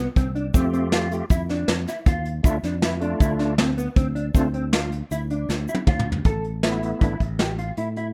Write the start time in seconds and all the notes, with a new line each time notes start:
0.16 C2 C4, kick, closed hi-hat, shaker
0.35 D4, closed hi-hat
0.54 F2 A3 C4 F4 G4, kick, closed hi-hat, shaker
0.73 C4, closed hi-hat, shaker
0.92 F4, snare, closed hi-hat, shaker
1.11 A3 F4 G4, closed hi-hat, shaker
1.30 F2 E4, kick, closed hi-hat, shaker
1.49 D4, snare, closed hi-hat
1.68 F2, snare, closed hi-hat
1.87 E4, snare, closed hi-hat, shaker
2.06 D#2 F4, kick, closed hi-hat, shaker
2.25 closed hi-hat
2.43 D2 A3 D4 E4 F4, kick, closed hi-hat, shaker
2.63 F2 D4, snare, closed hi-hat, shaker
2.82 E4, snare, closed hi-hat, shaker
3.00 A3 D4 F4, closed hi-hat
3.20 D2 E4, kick, closed hi-hat, shaker
3.39 D4, snare, closed hi-hat
3.58 C4, snare, closed hi-hat
3.78 B3, closed hi-hat, shaker
3.96 D2 C4, kick, closed hi-hat, shaker
4.15 D4, closed hi-hat
4.34 D2 A3 C4 D4 F4, kick, closed hi-hat, shaker
4.54 C4, closed hi-hat
4.73 F4, snare, closed hi-hat, shaker
4.92 closed hi-hat
5.11 D2 E4, closed hi-hat, shaker
5.30 D4, closed hi-hat
5.49 D2, snare, shaker
5.68 E4, shaker
5.75 high tom
5.87 D2 F4, kick, mid tom
5.99 mid tom
6.12 floor tom
6.25 A1 A4, kick, closed hi-hat
6.44 closed hi-hat
6.63 A3 B3 E4, snare, closed hi-hat
6.83 closed hi-hat
7.01 A1 A3 B3 D4 E4, kick, closed hi-hat
7.20 A1, kick, closed hi-hat
7.39 G4, snare, closed hi-hat
7.58 F4, closed hi-hat
7.77 A2 E4, closed hi-hat
7.96 E4, closed hi-hat